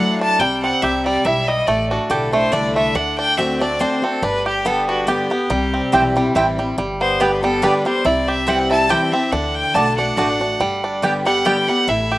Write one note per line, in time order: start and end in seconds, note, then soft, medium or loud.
0.00 0.37 F#3 medium
0.00 0.38 A3 medium
0.00 0.20 D4 medium
0.00 0.38 D4 medium
0.00 0.38 E4 loud
0.00 0.20 F#5 medium
0.20 0.40 D4 medium
0.20 0.41 A5 loud
0.39 0.69 C2 medium
0.39 0.81 C3 medium
0.39 1.01 G3 medium
0.39 0.62 G5 loud
0.63 1.21 C4 medium
0.63 0.84 F#5 medium
0.82 1.19 C2 medium
0.82 1.23 C3 medium
0.82 1.44 G4 medium
0.82 1.05 E5 medium
1.05 1.47 G3 medium
1.05 1.27 D5 medium
1.25 1.61 B1 medium
1.25 1.65 G2 medium
1.25 1.68 E4 medium
1.25 1.49 E5 medium
1.48 1.68 G3 medium
1.48 1.68 D#5 loud
1.67 1.97 A1 medium
1.67 2.49 A2 medium
1.67 2.29 A3 medium
1.67 1.89 D5 medium
1.90 2.53 D4 medium
1.90 2.12 F#4 soft
2.10 2.46 B1 medium
2.10 2.32 D3 loud
2.10 2.32 A3 medium
2.10 2.32 D4 medium
2.10 2.31 E4 medium
2.10 2.71 G4 medium
2.10 2.32 A4 medium
2.32 2.75 A3 medium
2.32 2.52 D4 soft
2.32 2.52 E4 medium
2.32 2.54 C5 medium
2.52 2.88 C2 medium
2.52 2.93 D3 medium
2.52 2.93 A3 medium
2.52 2.93 D4 medium
2.52 2.95 D4 medium
2.52 2.94 E4 medium
2.52 2.74 D5 medium
2.75 2.95 A3 medium
2.75 2.96 E5 medium
2.94 3.83 D2 loud
2.94 3.36 D3 medium
2.94 3.17 D4 medium
2.94 3.18 F#5 medium
3.18 3.60 D4 medium
3.18 3.39 G5 loud
3.37 3.60 D3 medium
3.37 3.60 A3 medium
3.37 3.99 C4 medium
3.37 3.60 C4 loud
3.37 3.59 F#4 medium
3.37 3.60 E5 medium
3.60 3.79 C4 medium
3.60 3.80 D4 medium
3.60 3.79 F#4 medium
3.60 3.82 D5 medium
3.79 4.02 D3 medium
3.79 4.02 A3 loud
3.79 4.02 C4 loud
3.79 4.22 D4 medium
3.79 4.01 F#4 loud
3.79 4.04 C5 medium
4.02 4.22 C4 soft
4.02 4.23 C4 medium
4.02 4.21 F#4 medium
4.02 4.24 A4 medium
4.22 5.10 G1 loud
4.22 5.04 G2 medium
4.22 4.84 D4 medium
4.22 4.46 B4 loud
4.46 5.08 G4 medium
4.46 4.68 G4 medium
4.65 5.06 D3 medium
4.65 5.06 G3 medium
4.65 5.26 B3 medium
4.65 5.06 B3 medium
4.65 5.06 G4 loud
4.65 4.87 A4 medium
4.88 5.47 D4 medium
4.88 5.09 F#4 medium
5.07 5.29 D3 medium
5.07 5.30 G3 medium
5.07 5.30 B3 loud
5.07 6.35 G4 medium
5.07 5.93 G4 medium
5.07 5.29 G4 loud
5.30 5.50 B3 medium
5.30 5.50 B3 soft
5.30 5.49 G4 medium
5.50 5.80 C2 loud
5.50 6.31 C3 medium
5.50 6.16 G3 medium
5.74 6.32 C4 medium
5.92 6.29 B1 medium
5.92 6.14 E3 medium
5.92 6.15 G3 medium
5.92 6.02 C4 medium
5.92 6.15 C4 medium
5.92 6.02 E4 medium
5.92 6.14 E4 medium
5.92 7.20 G4 soft
5.92 6.03 C5 medium
5.92 6.03 G5 loud
6.16 6.59 G3 medium
6.16 6.35 C4 medium
6.16 6.34 E4 medium
6.35 6.72 A1 medium
6.35 6.57 E3 medium
6.35 6.58 G3 medium
6.35 6.45 C4 medium
6.35 6.58 C4 medium
6.35 6.45 E4 medium
6.35 6.78 E4 medium
6.35 6.57 E4 loud
6.35 6.45 C5 medium
6.35 6.46 G5 loud
6.58 6.78 G3 medium
6.58 6.78 C4 soft
6.58 6.77 E4 medium
6.78 7.66 G1 medium
6.78 7.59 G2 medium
6.78 7.39 G3 medium
7.01 7.59 B3 medium
7.01 7.22 C5 medium
7.20 7.42 D3 medium
7.20 7.42 G3 medium
7.20 7.30 B3 medium
7.20 7.43 B3 loud
7.20 7.30 G4 medium
7.20 7.81 G4 soft
7.20 7.42 G4 medium
7.20 7.42 B4 medium
7.20 7.30 D5 medium
7.20 7.31 G5 medium
7.43 7.85 G3 medium
7.43 7.62 B3 medium
7.43 7.62 G4 medium
7.43 7.65 A4 medium
7.62 7.84 D3 medium
7.62 7.85 G3 medium
7.62 7.72 B3 medium
7.62 7.85 B3 medium
7.62 8.05 D4 medium
7.62 7.72 G4 loud
7.62 7.84 G4 loud
7.62 7.86 B4 medium
7.62 7.73 D5 loud
7.62 7.73 G5 medium
7.85 8.06 G3 medium
7.85 8.05 B3 soft
7.85 8.04 G4 medium
7.85 8.07 C5 loud
8.05 8.93 C2 loud
8.05 8.86 C3 medium
8.05 8.66 E4 medium
8.05 8.30 D5 medium
8.28 8.86 G4 medium
8.28 8.50 E5 medium
8.46 8.88 E3 medium
8.46 8.88 G3 medium
8.46 8.57 C4 medium
8.46 9.09 C4 medium
8.46 8.88 C4 medium
8.46 8.57 E4 medium
8.46 8.89 E4 loud
8.46 8.57 C5 medium
8.46 8.70 F#5 medium
8.46 8.58 G5 medium
8.71 9.29 E4 medium
8.71 8.92 A5 loud
8.89 9.12 E3 medium
8.89 9.12 G3 medium
8.89 9.00 C4 loud
8.89 9.12 C4 medium
8.89 9.00 E4 medium
8.89 9.11 E4 loud
8.89 9.33 G4 medium
8.89 9.00 C5 medium
8.89 9.14 G5 medium
8.89 9.00 G5 loud
9.12 9.32 C4 soft
9.12 9.33 C4 medium
9.12 9.31 E4 medium
9.12 9.33 E5 medium
9.32 9.62 D2 loud
9.32 9.74 D3 medium
9.32 9.74 D4 medium
9.32 9.56 F#5 medium
9.54 9.75 G5 loud
9.74 10.11 B1 medium
9.74 9.97 D3 medium
9.74 9.85 A3 medium
9.74 9.98 A3 medium
9.74 9.97 D4 soft
9.74 9.98 D4 loud
9.74 9.85 F#4 medium
9.74 9.97 F#4 loud
9.74 9.85 D5 medium
9.74 9.96 A5 loud
9.74 9.85 A5 medium
9.97 10.17 D4 medium
9.97 10.17 D4 soft
9.97 10.17 F#4 medium
9.97 10.98 F#5 loud
10.17 10.54 A1 medium
10.17 10.40 D3 medium
10.17 10.27 A3 medium
10.17 10.40 A3 medium
10.17 10.40 D4 medium
10.17 10.40 D4 loud
10.17 10.27 F#4 medium
10.17 10.38 F#4 medium
10.17 10.28 D5 medium
10.17 10.28 A5 loud
10.40 10.60 D4 soft
10.40 10.61 D4 medium
10.40 10.59 F#4 medium
10.60 11.48 G1 medium
10.60 11.41 G2 medium
10.60 11.21 G3 medium
10.84 11.42 D4 medium
11.02 11.25 D3 medium
11.02 11.25 G3 medium
11.02 11.12 B3 medium
11.02 11.25 B3 medium
11.02 11.13 G4 medium
11.02 11.45 G4 medium
11.02 11.24 G4 medium
11.02 11.13 D5 medium
11.02 11.13 G5 loud
11.25 11.68 G3 medium
11.25 11.45 B3 medium
11.25 11.44 G4 medium
11.25 11.47 F#5 loud
11.45 11.67 D3 medium
11.45 11.67 G3 medium
11.45 11.55 B3 medium
11.45 11.68 B3 medium
11.45 11.55 G4 loud
11.45 11.88 G4 medium
11.45 11.67 G4 loud
11.45 11.55 D5 loud
11.45 11.70 G5 medium
11.45 11.56 G5 loud
11.68 11.88 G3 medium
11.68 11.88 B3 soft
11.68 11.87 G4 medium
11.68 11.90 F#5 loud
11.88 12.18 A1 medium
11.88 12.18 A2 medium
11.88 12.18 E4 medium
11.88 12.18 E5 medium
12.12 12.18 G4 medium